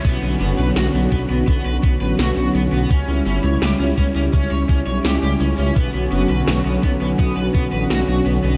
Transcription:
<<
  \new Staff \with { instrumentName = "Overdriven electric guitar" } { \time 4/4 \key b \minor \tempo 4 = 84 b16 b16 b16 b'16 fis'16 b16 b16 b16 b16 b'16 b16 b'16 fis'16 fis'16 b16 b16 | cis'16 cis'16 cis'16 cis''16 g'16 cis'16 cis'16 cis'16 cis'16 cis''16 cis'16 cis''16 g'16 g'16 cis'16 cis'16 | b16 b16 b16 b'16 fis'16 b16 b16 b16 b16 b'16 b16 b'16 fis'16 fis'16 b16 b16 | }
  \new Staff \with { instrumentName = "Analog synth pad" } { \time 4/4 \key b \minor << { <d fis b fis'>1 | <g e'>1 | <d fis b fis'>1 | } \\ { cis'1~ | cis'1~ | cis'1 | } >> }
  \new Staff \with { instrumentName = "Detuned saw bass" } { \clef bass \time 4/4 \key b \minor b,,16 b,,16 fis,,16 b,,16 b,,16 b,,16 b,,16 b,,16 b,,16 b,,16 b,,16 a,,16 b,,16 b,,16 b,,16 b,,16 | cis,16 cis,16 g,,16 cis,16 cis,16 cis,16 cis,16 cis,16 cis,16 cis,16 cis,16 b,,16 cis,16 cis,16 cis,16 cis,16 | b,,16 b,,16 fis,,16 b,,16 b,,16 b,,16 b,,16 b,,16 b,,16 b,,16 b,,16 a,,16 b,,16 b,,16 b,,16 b,,16 | }
  \new DrumStaff \with { instrumentName = "Drums" } \drummode { \time 4/4 <cymc hh bd>8 hh8 <hh sn>8 <hh bd>8 <hh bd>8 <hh bd>8 <hh sn>8 hh8 | <hh bd>8 hh8 <hh sn>8 <hh bd>8 <hh bd>8 <hh bd>8 <hh sn>8 hh8 | <hh bd>8 hh8 <hh sn>8 <hh bd>8 <hh bd>8 <hh bd>8 <hh sn>8 hh8 | }
>>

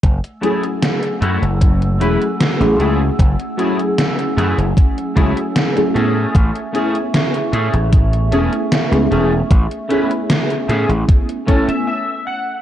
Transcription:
<<
  \new Staff \with { instrumentName = "Ambient pad" } { \time 4/4 \key fis \minor \tempo 4 = 76 << { <fis'' e'''>1~ | <fis'' e'''>2.~ <fis'' e'''>8 <e'' cis'''>8~ | <e'' cis'''>1~ | <e'' cis'''>2. r4 | } \\ { <a gis''>1~ | <a gis''>1~ | <a gis''>1~ | <a gis''>2. r4 | } >> }
  \new Staff \with { instrumentName = "Clean electric guitar" } { \time 4/4 \key fis \minor r8 <a e' gis'>16 r8. <a e' fis'>16 r8. <a e' b'>16 r8. <a e' gis'>16 r16 | r8 <a e' gis'>16 r8. <a e' gis'>16 r8. <a e' gis'>16 r8. <a cis' gis'>8~ | <a cis' gis'>8 <a cis' gis'>16 r8. <a cis' gis'>16 r8. <a cis' gis'>16 r8. <a cis' gis'>16 r16 | r8 <a cis' b'>16 r8. <a cis' gis'>16 r8. <a cis' a' cis''>16 e''16 e''8 fis''8 | }
  \new Staff \with { instrumentName = "FM electric piano" } { \time 4/4 \key fis \minor r8 <fis a cis' e' gis'>2 <fis a cis' e' gis'>8. <fis a cis' e' gis'>16 <fis a cis' e' gis'>16 r16 | r8 <fis a cis' e' gis'>2 <fis a cis' e' gis'>8. <fis a cis' e' gis'>16 <a b cis' e' gis'>16 r16 | r8 <a b cis' e' gis'>2 <a b cis' e' gis'>8. <a b cis' e' gis'>16 <a b cis' e' gis'>16 r16 | r8 <a b cis' e' gis'>2 <a b cis' e' gis''>8 r4 | }
  \new Staff \with { instrumentName = "Slap bass" } { \clef bass \time 4/4 \key fis \minor fis,,16 r4 r16 fis,16 fis,,8. e,,16 r8 a,,16 cis,16 r16 | fis,,16 r4 r16 fis,16 fis,,16 r8 cis,16 r8. a,16 r16 | a,,16 r4 r16 a,16 a,,8. e,,16 r8 cis,16 e,,16 r16 | a,,16 r4 r16 a,16 a,,16 r2 | }
  \new DrumStaff \with { instrumentName = "Drums" } \drummode { \time 4/4 <hh bd>16 hh16 hh16 hh16 <hh sn>16 hh16 hh16 hh16 <hh bd>16 hh16 hh16 hh16 <hh sn>16 hh16 hh8 | <hh bd>16 hh16 hh16 hh16 <hh sn>16 hh16 <hh sn>16 hh16 <hh bd>16 hh16 <hh bd>16 hh16 <hh sn>16 hh16 hh8 | <hh bd>16 hh16 hh16 hh16 <hh sn>16 hh16 hh16 hh16 <hh bd>16 hh16 hh16 hh16 <hh sn>16 hh16 hh8 | <hh bd>16 hh16 hh16 hh16 <hh sn>16 hh16 <hh sn>16 hh16 <hh bd>16 hh16 <hh bd>16 hh16 r4 | }
>>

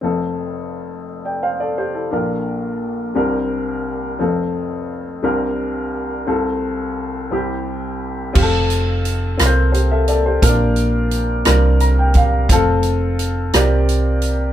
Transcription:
<<
  \new Staff \with { instrumentName = "Upright piano" } { \time 6/8 \key f \major \tempo 4. = 58 << { r4. r16 <d'' g''>16 <c'' f''>16 <a' d''>16 <g' c''>16 <e' a'>16~ | <e' a'>16 r2 r8. | r2. | r2. |
r2 <g' c''>16 <a' e''>16 <a' d''>16 <g' c''>16~ | <g' c''>16 r4. r16 bes''16 g''16 f''8 | r2. | } \\ { <c' f' a'>2. | <d' f' bes'>4. <g c' d' f' bes'>4. | <c' f' a'>4. <g c' d' f' bes'>4. | <c' f' a'>4. <c' e' g'>4. |
<c' f' g' a'>4 r8 <c' f' bes' c''>4 r8 | <c' d' f' bes'>4 r8 <g c' d' f' bes'>4 r8 | <c' f' a'>4 r8 <c' f' g' bes' d''>4 r8 | } >> }
  \new Staff \with { instrumentName = "Upright piano" } { \clef bass \time 6/8 \key f \major <f,, f,>2. | <bes,, bes,>4. <c, c>4. | <f,, f,>4. <c, c>4. | <c, c>4. <c, c>4. |
r2. | bes,4. c4. | r4. c4. | }
  \new Staff \with { instrumentName = "Fingered electric bass" } { \clef bass \time 6/8 \key f \major r2. | r2. | r2. | r2. |
f,,4. c,4. | bes,,4. c,4. | f,,4. c,4. | }
  \new DrumStaff \with { instrumentName = "Drums" } \drummode { \time 6/8 r4. r4. | r4. r4. | r4. r4. | r4. r4. |
<cymc bd>8 hh8 hh8 <hh ss>8 hh8 hh8 | <hh bd>8 hh8 hh8 <hh ss>8 hh8 <hh bd>8 | <hh bd>8 hh8 hh8 <hh ss>8 hh8 hh8 | }
>>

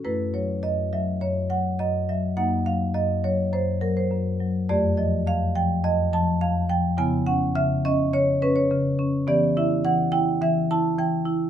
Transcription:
<<
  \new Staff \with { instrumentName = "Marimba" } { \time 4/4 \key fis \dorian \tempo 4 = 104 << { b'8 cis''8 dis''8 e''8 cis''8 fis''8 dis''8 e''8 | fis''8 f''8 dis''8 cis''8 c''8 ais'16 c''8. r8 | d''8 dis''8 f''8 g''8 dis''8 a''8 f''8 g''8 | gis''8 fis''8 e''8 dis''8 cis''8 b'16 cis''8. r8 |
\key e \minor d''8 e''8 fis''8 g''8 e''8 a''8 g''4 | } \\ { <a e'>1 | <ais dis'>1 | <a g'>1 | <b e'>1 |
<b g'>1 | } >> }
  \new Staff \with { instrumentName = "Marimba" } { \clef bass \time 4/4 \key fis \dorian fis,8 fis8 fis,8 fis8 fis,8 fis8 fis,8 fis8 | fis,8 fis8 fis,8 fis8 fis,8 fis8 fis,8 fis8 | f,8 f8 f,8 f8 f,8 f8 f,8 f8 | cis8 cis'8 cis8 cis'8 cis8 cis'8 cis8 cis'8 |
\key e \minor e8 e'8 e8 e'8 e8 e'8 e8 e'8 | }
>>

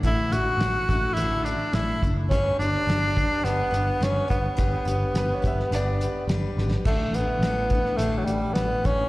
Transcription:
<<
  \new Staff \with { instrumentName = "Upright piano" } { \time 4/4 \key g \lydian \tempo 4 = 105 r1 | r1 | r4 b'16 cis''16 e''8 d''4.~ d''16 r16 | r1 | }
  \new Staff \with { instrumentName = "Steel-string acoustic guitar" } { \time 4/4 \key g \lydian <a, d a d' e' a'>8 <a d' e' a'>8 <a d' e' a'>8 <a d' e' a'>8 <a, d a d' e' a'>8 <a d' e' a'>8 <a d' e' a'>8 <a d' e' a'>8 | <g d' g' b'>8 <d' g' b'>8 <g d' g' b'>8 <d' g' b'>8 <g d' g' b'>8 <d' g' b'>8 <g d' g' b'>8 <d' g' b'>8 | <g d' g' b'>8 <d' g' b'>8 <g d' g' b'>8 <d' g' b'>8 <g d' g' b'>8 <d' g' b'>8 <g d' g' b'>8 <d' g' b'>8 | <a, d a d' e' a'>8 <a d' e' a'>8 <a d' e' a'>8 <a d' e' a'>8 <a, d a d' e' a'>8 <a d' e' a'>8 <a d' e' a'>8 <a d' e' a'>8 | }
  \new Staff \with { instrumentName = "Tenor saxophone" } { \time 4/4 \key g \lydian e'8 fis'4. e'8 d'8 e'8 r8 | cis'8 d'4. b4 cis'8 b8~ | b2. r4 | a8 b4. a16. fis32 g8 b8 cis'8 | }
  \new Staff \with { instrumentName = "Picked electric bass" } { \clef bass \time 4/4 \key g \lydian a,,8 a,,8 a,,8 a,,8 a,,4 a,,8 fis,,8 | g,,8 g,,8 g,,4 g,,8 g,,8 g,,8 g,,8 | g,,8 g,,8 g,,8 g,,8 g,,4 g,,8 gis,,8 | a,,8 a,,8 a,,4 a,,8 a,,8 a,,8 a,,8 | }
  \new DrumStaff \with { instrumentName = "Drums" } \drummode { \time 4/4 <hh bd>8 hh8 <hh sn>8 <hh bd>8 hh8 hh8 <hh sn>8 <hh bd>8 | <hh bd>8 hh8 <hh sn>8 <hh bd>8 hh8 hh8 <hh sn>8 <hh bd>8 | <hh bd>8 hh8 <hh sn>8 <hh bd>16 sn16 hh8 hh8 <hh sn>8 sn16 sn16 | <cymc bd>8 hh8 <hh sn>8 <hh bd>16 sn16 hh8 hh8 <hh sn>8 <hh bd>8 | }
>>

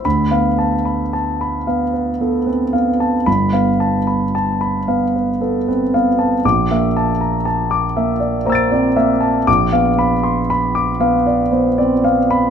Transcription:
<<
  \new Staff \with { instrumentName = "Grand piano" } { \time 3/4 \key d \dorian \tempo 4 = 58 << { b''8 r2 r8 | b''8 r2 r8 | d'''8 r4. <bes'' e''' a''' d''''>4 | d'''8 r2 r8 | } \\ { r16 f''16 a''16 b''16 a''16 b''16 f''16 b'16 a'16 b'16 f''16 a''16 | r16 f''16 a''16 b''16 a''16 b''16 f''16 b'16 a'16 b'16 f''16 a''16 | r16 e''16 a''16 bes''16 a''16 d'''16 e''16 d''16 c''16 d''16 e''16 a''16 | r16 f''16 b''16 c'''16 b''16 d'''16 f''16 d''16 c''16 d''16 f''16 b''16 | } >> }
  \new Staff \with { instrumentName = "Grand piano" } { \time 3/4 \key d \dorian d,16 b8 r8. b8 b16 c'16 b8 | g,,16 b8 r8. b8 b16 c'16 b8 | bes,,16 bes8 r8. bes8 bes16 c'16 bes8 | bes,,16 b8 r8. b8 b16 c'16 b8 | }
>>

